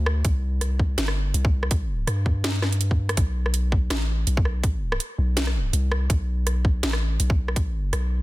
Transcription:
Already playing: D2
0.06 cross-stick
0.25 C2, kick, closed hi-hat
0.61 cross-stick, closed hi-hat
0.80 kick
0.98 G1, snare, closed hi-hat
1.08 cross-stick
1.34 C2, closed hi-hat
1.45 kick
1.63 cross-stick
1.71 kick, closed hi-hat
2.07 G2, cross-stick, closed hi-hat
2.26 kick
2.44 snare, closed hi-hat
2.62 cross-stick, snare
2.72 closed hi-hat
2.81 closed hi-hat
2.91 kick
3.09 cross-stick, closed hi-hat
3.17 B1, kick, closed hi-hat
3.46 cross-stick
3.54 closed hi-hat
3.72 kick
3.90 A1, cross-stick, snare, closed hi-hat
4.27 B1, closed hi-hat
4.37 kick
4.45 cross-stick
4.63 kick, closed hi-hat
4.92 cross-stick
5.00 closed hi-hat
5.18 B1
5.37 snare, closed hi-hat
5.47 cross-stick
5.73 C2, closed hi-hat
5.92 cross-stick
6.10 kick, closed hi-hat
6.47 cross-stick, closed hi-hat
6.65 kick
6.83 A1, snare, closed hi-hat
6.93 cross-stick
7.20 B1, closed hi-hat
7.30 kick
7.48 cross-stick
7.56 kick, closed hi-hat
7.93 B1, cross-stick, closed hi-hat

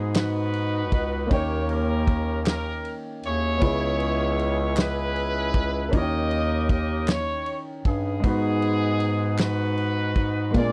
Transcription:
Already playing: G#2 B3 D#4 F#4 G#4 D#5
0.14 D#4 F#4 B4, snare, clap, ride
0.54 ride
0.92 C#2, kick, ride
1.27 D#3 A#3 C#4 D#5
1.31 D#2 G4 A#4 C#5 G5, kick, ride
1.69 C#4 G4 A#4, ride
2.07 kick, ride
2.46 A#4, snare, clap, ride
2.85 ride
3.23 D#2 E4 G#4 C#5, ride
3.58 B3 C#4, ride
3.62 C#2 C#3 E4 G#4, kick
3.66 C#5
4.00 ride
4.39 ride
4.77 E4 G#4 B4, snare, clap, ride
5.16 ride
5.54 C#2, kick, ride
5.89 C#4 A#4
5.93 D#2 D#3 D#4 E4 G4 A#4 D#5, kick, ride
5.97 C#5
6.01 G5
6.31 ride
6.69 D#5, kick, ride
7.07 C#5, snare, clap, ride
7.46 ride
7.85 G2 B3 D#4 G#4, kick, ride
8.20 G#2 G#3 B3, kick, ride
8.24 D#4 F#4
8.28 B4
8.62 ride
9.00 ride
9.38 D#4 F#4 B4, snare, clap, ride
9.78 ride
10.15 G#2, kick, ride
10.51 A#2 G#3 A#3 C4, kick, ride
10.55 A#2 F4 G#4 A#4 D5
10.61 D4

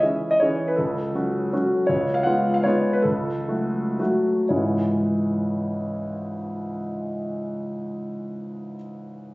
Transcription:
0.00 E3 C#4 G#4 E5
0.31 D#5
0.40 E3 C#4 G#4 C#5
0.68 B4
0.76 C#2 A4
1.15 F#3 C#4 F#4
1.53 F#3 C#4 F#4
1.87 C#2 C#5
2.14 F5
2.23 G#3 B3 F4 F#5
2.54 F5
2.63 G#3 B3 F4 C#5
2.93 B4
3.02 C#2 A4
3.48 F#3 A3 F#4
3.99 F#3 A3 F#4
4.49 C#2 G#2 E3 G#3 C#4 E4 C#5

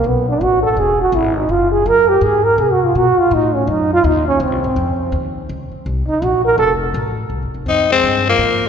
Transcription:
0.04 B1 B3
0.29 D4
0.41 A1 F#4
0.63 A4
0.77 E1 G#4
1.01 F#4
1.12 G#1 E4
1.36 D#4
1.49 F#1 F4
1.71 G#4
1.86 F#2 A#4
2.09 G4
2.21 G#2 G#4
2.45 A#4
2.58 C3 G#4
2.72 F#4
2.84 F4
2.95 B2 F#4
3.18 F4, muted upright bass stroke
3.31 A2 D#4
3.54 C#4
3.67 F#2 D#4
3.93 F4
4.04 D#2 D#4
4.28 C#4
4.40 C#2 C4
4.52 C2
4.64 G#1
4.76 F2
5.12 D#2
5.49 C#2
5.72 muted upright bass stroke
5.86 C2
6.08 D#4, muted upright bass stroke
6.22 A#1 F#4
6.45 A#4
6.58 F1 A4
6.94 A1
7.30 C2
7.43 G#1
7.54 F1
7.66 F2 C4 D#4
7.90 G#3 C4
8.03 G2
8.28 F3 A#3
8.38 G#2
8.65 F3

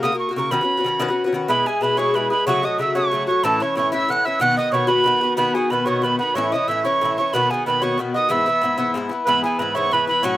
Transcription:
0.03 C#3 A#3 F#4 A#4 D#6
0.12 A#3 F#4 A#4
0.19 C#6
0.29 A#3 F#4 A#4
0.36 C#3 A#3 F#4 A#4 C#6
0.51 D#3 C#4 F#4 B4 B5
0.61 C#4 F#4 B4
0.77 C#4 F#4 B4
0.84 D#3 C#4 F#4 B4
1.00 D#3 C#4 F#4 B4
1.08 C#4 F#4 B4
1.24 C#4 F#4 B4
1.33 D#3 C#4 F#4 B4
1.48 B2 G#3 E4 G#4 B4 B5
1.65 G#3 E4 G#4 G#5
1.81 B2 G#3 E4 G#4 B4 B5
1.97 B2 G#3 E4 G#4 C#5 C#6
2.13 B2 G#3 E4 B4 B5
2.18 G#4
2.30 G#3 E4 G#4 B4 B5
2.46 C#3 F#3 A3 F#4 C#5 C#6
2.63 F#3 A3 F#4 D#5 D#6
2.78 C#3 F#3 A3 F#4 E5 E6
2.95 C#3 F#3 A3 F#4 C#5 C#6
3.06 C#5
3.11 C#3 F#3 A3 F#4
3.18 C#5
3.27 F#3 A3 F#4 C#5 C#6
3.43 A2 E3 C#4 E4 A4 A5
3.60 E3 C#4 E4 C#5 C#6
3.75 A2 E3 C#4 E4 C#5 C#6
3.92 A2 E3 C#4 E4 E5 E6
4.08 A2 E3 C#4 E4 F#5 F#6
4.24 E3 C#4 E4 E5 E6
4.40 B2 D#3 B3 F#4 F#5 F#6
4.57 D#3 B3 F#4 D#5 D#6
4.72 B2 D#3 B3 F#4 C#5 C#6
4.87 B2 D#3 B3 F#4 B4 B5
5.04 B2 D#3 B3 F#4
5.21 D#3 B3 F#4
5.36 B2 D#3 B3 F#4 B4 B5
5.54 D#3 B3 F#4 G#4 G#5
5.70 B2 D#3 B3 F#4 B4 B5
5.85 B2 D#3 B3 F#4 C#5 C#6
6.02 B2 D#3 B3 F#4 B4 B5
6.18 B3 F#4 B4 B5
6.22 D#3
6.34 A2 E3 C#4 C#5 C#6
6.38 E4
6.52 E3 C#4 E4 D#5 D#6
6.68 A2 E3 C#4 E4 E5 E6
6.83 A2 E3 C#4 E4 C#5 C#6
7.01 A2 E3 C#4 E4
7.17 E3 C#4 E4 C#5 C#6
7.33 B2 D#3 B3 F#4 B4 B5
7.50 D#3 B3 F#4 G#4 G#5
7.66 B2 D#3 B3 F#4 B4 B5
7.81 B2 D#3 B3 F#4 C#5 C#6
7.98 B2 D#3 B3 F#4
8.14 D#3 B3 F#4 D#5 D#6
8.29 G#2 E3 B3 E4 E5 E6
8.46 E3 B3 E4
8.62 G#2 E3 B3 E4
8.78 G#2 E3 B3 E4
8.94 G#2 E3 B3 E4
9.09 E3 B3 E4
9.25 G#2 E3 B3 E4 B4 B5
9.42 B3 E4 G#4 G#5
9.47 E3
9.58 G#2 E3 B3 B4 B5
9.62 E4
9.74 G#2 E3 B3 E4 C#5 C#6
9.91 G#2 E3 B3 E4 B4 B5
10.07 E3 B3 E4 B5
10.22 A2 F#3 C#4 F#4 C#5 C#6

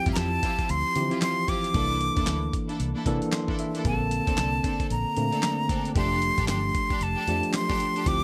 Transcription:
Already playing: F3 C4 E4 G4
0.06 G2 C4 E4 F4 G4, kick, closed hi-hat
0.13 A#5, snare, clap, closed hi-hat
0.17 F2 A5
0.42 C4 E4 F4 G4, kick, closed hi-hat
0.59 kick, closed hi-hat
0.69 D2 C6, closed hi-hat
0.95 D3 E3 C4 E4 G4, closed hi-hat
1.02 F3
1.11 C4 E4 F4 G4, closed hi-hat
1.21 C6, snare, clap, closed hi-hat
1.47 C4 E4 F4 G4 D6, kick, closed hi-hat
1.64 closed hi-hat
1.74 C2 E3 A#3 D4 E4 A4, kick, closed hi-hat
2.01 closed hi-hat
2.16 E2 A#3 D4 E4 A4, kick, closed hi-hat
2.27 D2, snare, clap, closed hi-hat
2.53 kick, closed hi-hat
2.69 A#3 D4 E4 A4, closed hi-hat
2.80 C2, closed hi-hat
2.95 A#3 D4 E4 A4
3.06 C3 E3 A#3 D4 A4, kick, closed hi-hat
3.22 closed hi-hat
3.32 C6, snare, clap, closed hi-hat
3.48 A#3 D4 E4 A4, kick
3.59 E5, closed hi-hat
3.74 A#3 D4 E4 A4, closed hi-hat
3.85 A#1 D3 A#3 C4 G#4 A5, kick, closed hi-hat
3.93 A4
4.11 closed hi-hat
4.27 D2 C4 D4 A4, kick, closed hi-hat
4.37 C2, snare, clap, closed hi-hat
4.63 C4 D4 A4, kick, closed hi-hat
4.80 kick, closed hi-hat
4.90 A#1 A#5, closed hi-hat
5.17 A#2 D3 A3 A#3 C4, closed hi-hat
5.32 C4 D4 A4, closed hi-hat
5.43 snare, clap, closed hi-hat
5.69 C4 D4 A4, kick, closed hi-hat
5.85 closed hi-hat
5.95 F1 F3 A3 D4 G4 A4 C6, kick, closed hi-hat
6.22 closed hi-hat
6.38 A1 D4 G4 A4, kick, closed hi-hat
6.48 G1 C6, snare, clap, closed hi-hat
6.75 kick, closed hi-hat
6.90 D4 G4 A4, kick, closed hi-hat
7.01 F1 A5, closed hi-hat
7.16 D4 G4 A4
7.27 F2 F3 A3 D4 G4, closed hi-hat
7.43 closed hi-hat
7.53 C6, snare, clap, closed hi-hat
7.69 D4 G4 A4, kick, snare
7.80 closed hi-hat
7.95 D4 G4 A4, closed hi-hat
8.06 D2 F3 C4 E4 G4 D6, kick, closed hi-hat

